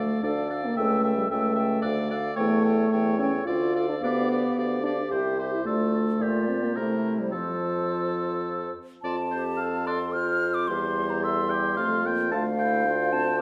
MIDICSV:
0, 0, Header, 1, 6, 480
1, 0, Start_track
1, 0, Key_signature, -1, "major"
1, 0, Tempo, 543478
1, 679, Time_signature, 3, 2, 24, 8
1, 5484, Tempo, 562324
1, 8364, Tempo, 545951
1, 11734, End_track
2, 0, Start_track
2, 0, Title_t, "Flute"
2, 0, Program_c, 0, 73
2, 0, Note_on_c, 0, 77, 46
2, 194, Note_off_c, 0, 77, 0
2, 203, Note_on_c, 0, 77, 49
2, 427, Note_off_c, 0, 77, 0
2, 432, Note_on_c, 0, 77, 47
2, 662, Note_off_c, 0, 77, 0
2, 667, Note_on_c, 0, 79, 52
2, 906, Note_off_c, 0, 79, 0
2, 919, Note_on_c, 0, 79, 45
2, 1141, Note_off_c, 0, 79, 0
2, 1146, Note_on_c, 0, 79, 52
2, 1373, Note_off_c, 0, 79, 0
2, 1379, Note_on_c, 0, 79, 49
2, 1616, Note_off_c, 0, 79, 0
2, 1620, Note_on_c, 0, 77, 49
2, 1850, Note_off_c, 0, 77, 0
2, 1856, Note_on_c, 0, 77, 48
2, 2077, Note_off_c, 0, 77, 0
2, 2082, Note_on_c, 0, 79, 53
2, 2319, Note_off_c, 0, 79, 0
2, 2325, Note_on_c, 0, 79, 49
2, 2569, Note_off_c, 0, 79, 0
2, 2577, Note_on_c, 0, 79, 53
2, 2817, Note_off_c, 0, 79, 0
2, 2822, Note_on_c, 0, 79, 49
2, 3060, Note_off_c, 0, 79, 0
2, 3065, Note_on_c, 0, 77, 46
2, 3300, Note_off_c, 0, 77, 0
2, 3305, Note_on_c, 0, 77, 51
2, 3537, Note_off_c, 0, 77, 0
2, 3542, Note_on_c, 0, 77, 52
2, 3775, Note_off_c, 0, 77, 0
2, 3780, Note_on_c, 0, 77, 44
2, 4022, Note_off_c, 0, 77, 0
2, 4030, Note_on_c, 0, 77, 47
2, 4262, Note_off_c, 0, 77, 0
2, 4267, Note_on_c, 0, 77, 47
2, 4508, Note_off_c, 0, 77, 0
2, 4524, Note_on_c, 0, 76, 45
2, 4747, Note_off_c, 0, 76, 0
2, 4753, Note_on_c, 0, 76, 41
2, 4990, Note_off_c, 0, 76, 0
2, 4996, Note_on_c, 0, 74, 51
2, 5277, Note_off_c, 0, 74, 0
2, 5484, Note_on_c, 0, 74, 47
2, 5942, Note_off_c, 0, 74, 0
2, 5947, Note_on_c, 0, 72, 44
2, 6426, Note_off_c, 0, 72, 0
2, 6447, Note_on_c, 0, 72, 47
2, 7629, Note_off_c, 0, 72, 0
2, 7883, Note_on_c, 0, 81, 70
2, 8613, Note_on_c, 0, 84, 68
2, 8626, Note_off_c, 0, 81, 0
2, 8839, Note_on_c, 0, 89, 76
2, 8853, Note_off_c, 0, 84, 0
2, 9206, Note_on_c, 0, 86, 68
2, 9219, Note_off_c, 0, 89, 0
2, 9325, Note_on_c, 0, 84, 60
2, 9338, Note_off_c, 0, 86, 0
2, 9698, Note_on_c, 0, 82, 62
2, 9711, Note_off_c, 0, 84, 0
2, 9801, Note_off_c, 0, 82, 0
2, 9807, Note_on_c, 0, 84, 70
2, 10517, Note_off_c, 0, 84, 0
2, 10773, Note_on_c, 0, 77, 75
2, 11477, Note_on_c, 0, 81, 80
2, 11491, Note_off_c, 0, 77, 0
2, 11709, Note_off_c, 0, 81, 0
2, 11734, End_track
3, 0, Start_track
3, 0, Title_t, "Oboe"
3, 0, Program_c, 1, 68
3, 0, Note_on_c, 1, 74, 46
3, 205, Note_off_c, 1, 74, 0
3, 211, Note_on_c, 1, 74, 47
3, 437, Note_off_c, 1, 74, 0
3, 442, Note_on_c, 1, 74, 46
3, 671, Note_off_c, 1, 74, 0
3, 676, Note_on_c, 1, 76, 59
3, 910, Note_off_c, 1, 76, 0
3, 915, Note_on_c, 1, 76, 47
3, 1148, Note_off_c, 1, 76, 0
3, 1152, Note_on_c, 1, 76, 46
3, 1368, Note_off_c, 1, 76, 0
3, 1373, Note_on_c, 1, 76, 49
3, 1601, Note_off_c, 1, 76, 0
3, 1606, Note_on_c, 1, 74, 53
3, 1850, Note_off_c, 1, 74, 0
3, 1861, Note_on_c, 1, 74, 53
3, 2081, Note_off_c, 1, 74, 0
3, 2087, Note_on_c, 1, 73, 59
3, 2330, Note_off_c, 1, 73, 0
3, 2338, Note_on_c, 1, 73, 46
3, 2576, Note_off_c, 1, 73, 0
3, 2580, Note_on_c, 1, 73, 51
3, 2816, Note_off_c, 1, 73, 0
3, 2821, Note_on_c, 1, 73, 51
3, 3060, Note_off_c, 1, 73, 0
3, 3063, Note_on_c, 1, 74, 48
3, 3303, Note_off_c, 1, 74, 0
3, 3317, Note_on_c, 1, 74, 50
3, 3552, Note_off_c, 1, 74, 0
3, 3563, Note_on_c, 1, 74, 56
3, 3795, Note_off_c, 1, 74, 0
3, 3810, Note_on_c, 1, 74, 46
3, 4037, Note_off_c, 1, 74, 0
3, 4050, Note_on_c, 1, 74, 44
3, 4278, Note_off_c, 1, 74, 0
3, 4286, Note_on_c, 1, 74, 47
3, 4511, Note_off_c, 1, 74, 0
3, 4516, Note_on_c, 1, 72, 46
3, 4754, Note_off_c, 1, 72, 0
3, 4763, Note_on_c, 1, 72, 45
3, 4998, Note_off_c, 1, 72, 0
3, 5002, Note_on_c, 1, 69, 53
3, 5490, Note_on_c, 1, 67, 46
3, 5502, Note_off_c, 1, 69, 0
3, 5954, Note_on_c, 1, 70, 44
3, 5967, Note_off_c, 1, 67, 0
3, 6291, Note_off_c, 1, 70, 0
3, 6433, Note_on_c, 1, 69, 50
3, 7622, Note_off_c, 1, 69, 0
3, 7899, Note_on_c, 1, 74, 59
3, 8004, Note_off_c, 1, 74, 0
3, 8129, Note_on_c, 1, 72, 40
3, 8236, Note_off_c, 1, 72, 0
3, 8353, Note_on_c, 1, 77, 52
3, 8597, Note_off_c, 1, 77, 0
3, 8613, Note_on_c, 1, 74, 52
3, 8721, Note_off_c, 1, 74, 0
3, 8853, Note_on_c, 1, 72, 48
3, 9816, Note_on_c, 1, 76, 57
3, 9829, Note_off_c, 1, 72, 0
3, 10045, Note_on_c, 1, 79, 59
3, 10058, Note_off_c, 1, 76, 0
3, 10279, Note_off_c, 1, 79, 0
3, 10285, Note_on_c, 1, 77, 61
3, 10545, Note_on_c, 1, 79, 61
3, 10558, Note_off_c, 1, 77, 0
3, 10759, Note_off_c, 1, 79, 0
3, 10765, Note_on_c, 1, 81, 67
3, 10874, Note_off_c, 1, 81, 0
3, 11001, Note_on_c, 1, 79, 70
3, 11708, Note_off_c, 1, 79, 0
3, 11734, End_track
4, 0, Start_track
4, 0, Title_t, "Clarinet"
4, 0, Program_c, 2, 71
4, 0, Note_on_c, 2, 69, 44
4, 202, Note_off_c, 2, 69, 0
4, 212, Note_on_c, 2, 69, 48
4, 441, Note_off_c, 2, 69, 0
4, 455, Note_on_c, 2, 69, 46
4, 676, Note_off_c, 2, 69, 0
4, 681, Note_on_c, 2, 69, 54
4, 913, Note_off_c, 2, 69, 0
4, 917, Note_on_c, 2, 69, 46
4, 1149, Note_off_c, 2, 69, 0
4, 1157, Note_on_c, 2, 69, 46
4, 1387, Note_off_c, 2, 69, 0
4, 1395, Note_on_c, 2, 69, 51
4, 1625, Note_off_c, 2, 69, 0
4, 1634, Note_on_c, 2, 69, 49
4, 1859, Note_off_c, 2, 69, 0
4, 1864, Note_on_c, 2, 69, 49
4, 2099, Note_off_c, 2, 69, 0
4, 2103, Note_on_c, 2, 69, 52
4, 2328, Note_off_c, 2, 69, 0
4, 2333, Note_on_c, 2, 69, 47
4, 2566, Note_off_c, 2, 69, 0
4, 2571, Note_on_c, 2, 69, 50
4, 2813, Note_off_c, 2, 69, 0
4, 2821, Note_on_c, 2, 69, 50
4, 3060, Note_off_c, 2, 69, 0
4, 3064, Note_on_c, 2, 69, 53
4, 3303, Note_off_c, 2, 69, 0
4, 3307, Note_on_c, 2, 69, 48
4, 3547, Note_off_c, 2, 69, 0
4, 3555, Note_on_c, 2, 67, 51
4, 3791, Note_off_c, 2, 67, 0
4, 3802, Note_on_c, 2, 67, 45
4, 4029, Note_off_c, 2, 67, 0
4, 4034, Note_on_c, 2, 67, 47
4, 4270, Note_off_c, 2, 67, 0
4, 4275, Note_on_c, 2, 67, 47
4, 4512, Note_off_c, 2, 67, 0
4, 4520, Note_on_c, 2, 67, 48
4, 4757, Note_off_c, 2, 67, 0
4, 4763, Note_on_c, 2, 67, 46
4, 4989, Note_off_c, 2, 67, 0
4, 4995, Note_on_c, 2, 65, 47
4, 5356, Note_off_c, 2, 65, 0
4, 5492, Note_on_c, 2, 65, 47
4, 5959, Note_on_c, 2, 64, 44
4, 5972, Note_off_c, 2, 65, 0
4, 6451, Note_on_c, 2, 65, 44
4, 6464, Note_off_c, 2, 64, 0
4, 7655, Note_off_c, 2, 65, 0
4, 7903, Note_on_c, 2, 65, 51
4, 8008, Note_off_c, 2, 65, 0
4, 8137, Note_on_c, 2, 67, 46
4, 8375, Note_on_c, 2, 69, 48
4, 8388, Note_off_c, 2, 67, 0
4, 8614, Note_off_c, 2, 69, 0
4, 8618, Note_on_c, 2, 69, 52
4, 8865, Note_on_c, 2, 65, 48
4, 8878, Note_off_c, 2, 69, 0
4, 9337, Note_on_c, 2, 67, 49
4, 9350, Note_off_c, 2, 65, 0
4, 9816, Note_on_c, 2, 69, 53
4, 9829, Note_off_c, 2, 67, 0
4, 10064, Note_on_c, 2, 67, 62
4, 10077, Note_off_c, 2, 69, 0
4, 10307, Note_on_c, 2, 65, 55
4, 10320, Note_off_c, 2, 67, 0
4, 10775, Note_off_c, 2, 65, 0
4, 10780, Note_on_c, 2, 65, 56
4, 10886, Note_off_c, 2, 65, 0
4, 11023, Note_on_c, 2, 64, 60
4, 11251, Note_off_c, 2, 64, 0
4, 11266, Note_on_c, 2, 65, 54
4, 11724, Note_off_c, 2, 65, 0
4, 11734, End_track
5, 0, Start_track
5, 0, Title_t, "French horn"
5, 0, Program_c, 3, 60
5, 0, Note_on_c, 3, 57, 63
5, 199, Note_off_c, 3, 57, 0
5, 205, Note_on_c, 3, 62, 77
5, 576, Note_on_c, 3, 58, 69
5, 589, Note_off_c, 3, 62, 0
5, 688, Note_on_c, 3, 57, 62
5, 701, Note_off_c, 3, 58, 0
5, 1032, Note_off_c, 3, 57, 0
5, 1037, Note_on_c, 3, 55, 65
5, 1148, Note_off_c, 3, 55, 0
5, 1153, Note_on_c, 3, 57, 68
5, 1851, Note_off_c, 3, 57, 0
5, 2095, Note_on_c, 3, 57, 83
5, 2785, Note_off_c, 3, 57, 0
5, 2816, Note_on_c, 3, 61, 73
5, 2927, Note_off_c, 3, 61, 0
5, 3054, Note_on_c, 3, 65, 79
5, 3418, Note_off_c, 3, 65, 0
5, 3436, Note_on_c, 3, 62, 65
5, 3490, Note_off_c, 3, 62, 0
5, 3553, Note_on_c, 3, 59, 81
5, 4261, Note_off_c, 3, 59, 0
5, 4272, Note_on_c, 3, 62, 70
5, 4382, Note_off_c, 3, 62, 0
5, 4512, Note_on_c, 3, 67, 74
5, 4871, Note_off_c, 3, 67, 0
5, 4892, Note_on_c, 3, 64, 66
5, 4991, Note_off_c, 3, 64, 0
5, 4997, Note_on_c, 3, 57, 69
5, 5719, Note_on_c, 3, 60, 59
5, 5732, Note_off_c, 3, 57, 0
5, 5842, Note_on_c, 3, 58, 50
5, 5855, Note_off_c, 3, 60, 0
5, 5956, Note_off_c, 3, 58, 0
5, 5961, Note_on_c, 3, 57, 60
5, 6326, Note_on_c, 3, 55, 53
5, 6339, Note_off_c, 3, 57, 0
5, 6444, Note_on_c, 3, 53, 56
5, 6457, Note_off_c, 3, 55, 0
5, 7652, Note_off_c, 3, 53, 0
5, 7888, Note_on_c, 3, 60, 51
5, 9297, Note_off_c, 3, 60, 0
5, 9343, Note_on_c, 3, 55, 51
5, 10301, Note_on_c, 3, 57, 56
5, 10314, Note_off_c, 3, 55, 0
5, 10529, Note_on_c, 3, 58, 56
5, 10543, Note_off_c, 3, 57, 0
5, 10763, Note_off_c, 3, 58, 0
5, 10768, Note_on_c, 3, 57, 57
5, 11241, Note_on_c, 3, 62, 57
5, 11254, Note_off_c, 3, 57, 0
5, 11483, Note_on_c, 3, 60, 63
5, 11496, Note_off_c, 3, 62, 0
5, 11717, Note_off_c, 3, 60, 0
5, 11734, End_track
6, 0, Start_track
6, 0, Title_t, "Bassoon"
6, 0, Program_c, 4, 70
6, 0, Note_on_c, 4, 38, 53
6, 150, Note_off_c, 4, 38, 0
6, 208, Note_on_c, 4, 38, 54
6, 626, Note_off_c, 4, 38, 0
6, 689, Note_on_c, 4, 37, 65
6, 1103, Note_off_c, 4, 37, 0
6, 1166, Note_on_c, 4, 37, 60
6, 1577, Note_off_c, 4, 37, 0
6, 1627, Note_on_c, 4, 38, 61
6, 2048, Note_off_c, 4, 38, 0
6, 2110, Note_on_c, 4, 40, 67
6, 2530, Note_off_c, 4, 40, 0
6, 2591, Note_on_c, 4, 40, 60
6, 3013, Note_off_c, 4, 40, 0
6, 3074, Note_on_c, 4, 38, 58
6, 3500, Note_off_c, 4, 38, 0
6, 3567, Note_on_c, 4, 38, 63
6, 3915, Note_off_c, 4, 38, 0
6, 4040, Note_on_c, 4, 38, 51
6, 4463, Note_off_c, 4, 38, 0
6, 4518, Note_on_c, 4, 36, 53
6, 4945, Note_off_c, 4, 36, 0
6, 5001, Note_on_c, 4, 38, 54
6, 5487, Note_on_c, 4, 46, 48
6, 5500, Note_off_c, 4, 38, 0
6, 5958, Note_off_c, 4, 46, 0
6, 5963, Note_on_c, 4, 48, 46
6, 6434, Note_off_c, 4, 48, 0
6, 6450, Note_on_c, 4, 41, 46
6, 7630, Note_off_c, 4, 41, 0
6, 7901, Note_on_c, 4, 41, 56
6, 9304, Note_off_c, 4, 41, 0
6, 9344, Note_on_c, 4, 40, 60
6, 10283, Note_off_c, 4, 40, 0
6, 10301, Note_on_c, 4, 41, 55
6, 10772, Note_on_c, 4, 38, 65
6, 10786, Note_off_c, 4, 41, 0
6, 11734, Note_off_c, 4, 38, 0
6, 11734, End_track
0, 0, End_of_file